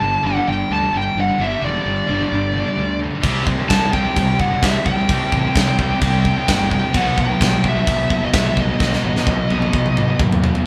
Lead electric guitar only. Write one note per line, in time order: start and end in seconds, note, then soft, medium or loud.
0.00 0.22 A5 loud
0.27 0.48 F#5 loud
0.48 0.72 G5 loud
0.73 0.95 A5 loud
0.97 1.19 G5 loud
1.21 1.42 F#5 loud
1.41 1.64 E5 medium
1.65 2.99 D5 medium
3.69 3.93 A5 loud
3.93 4.40 G5 loud
4.40 4.64 F#5 loud
4.64 4.88 E5 loud
4.86 6.74 G5 loud
6.75 6.97 G5 loud
6.97 7.20 F#5 loud
7.21 7.67 G5 loud
7.68 8.24 E5 loud
8.25 8.34 D#5 medium
8.35 8.56 E5 medium
8.60 10.17 D#5 medium